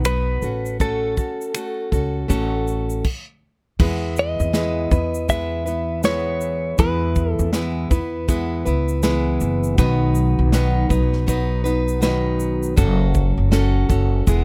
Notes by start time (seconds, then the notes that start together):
Already playing: B1
0.05 F#3 B3 D#4 B4, finger snap, shaker
0.42 A1 C#4 F#4 A4, shaker
0.66 shaker
0.80 A3 C#4 F#4 A4, kick, shaker
1.17 C#4 F#4 A4, kick, shaker
1.41 shaker
1.54 A3 C#4 F#4 A4, finger snap, shaker
1.92 C#2 C#4 F#4 A4, kick, shaker
2.28 A1 A3 C#4 F#4 A4, kick, shaker
2.67 shaker
2.90 shaker
3.04 kick, crash
3.79 E2 E3 G#3 B3 E4 B4, kick, crash
4.17 D#5, shaker
4.40 E2, shaker
4.53 E3 G#3 B3 E4 B4, snare, shaker
4.91 E2 B3 E4 B4, kick, shaker
5.14 shaker
5.28 G#3 B3 E4 B4 E5, kick, shaker
5.66 B3 E4 B4, shaker
6.03 E3 G#3 B3 E4 B4 C#5, snare, shaker
6.41 shaker
6.78 E2 E3 G#3 B3 E4 B4, kick, shaker
7.16 kick, shaker
7.32 A4
7.39 E2, shaker
7.53 E3 G#3 B3 E4 B4, snare, shaker
7.90 E2 B3 E4 B4, kick, shaker
8.28 G#3 B3 E4 B4, kick, shaker
8.65 C#2 B3 E4 B4, shaker
8.88 shaker
9.03 E3 G#3 B3 E4 B4, snare, shaker
9.40 F#1, shaker
9.64 shaker
9.78 B1 B2 D#3 F#3 B3 D#4 B4, kick, shaker
10.15 shaker
10.39 B1
10.52 B2 D#3 F#3 B3 D#4 B4, snare, shaker
10.89 B1 F#3 B3 D#4 B4, kick, shaker
11.13 snare
11.27 F#3 B3 D#4 B4, kick, shaker
11.64 F#3 B3 D#4 B4, shaker
11.88 shaker
12.01 B2 D#3 F#3 B3 D#4 B4, snare, shaker
12.40 shaker
12.63 shaker
12.76 F#1 F#3 C#4 F#4 A4, kick, shaker
13.14 kick, shaker
13.37 F#1
13.51 F#3 C#4 F#4 A4, snare, shaker
13.89 F#1 C#4 F#4 A4, kick, shaker
14.27 E1 G#3 B3 E4 G#4, kick, shaker